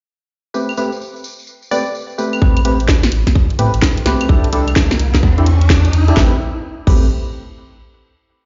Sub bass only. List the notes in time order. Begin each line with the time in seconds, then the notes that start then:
2.42 A1
3.12 A1
3.59 A2
3.74 A1
4.06 C2
4.29 C2
4.99 C2
5.23 E2
5.93 E2
6.17 A1
6.87 A1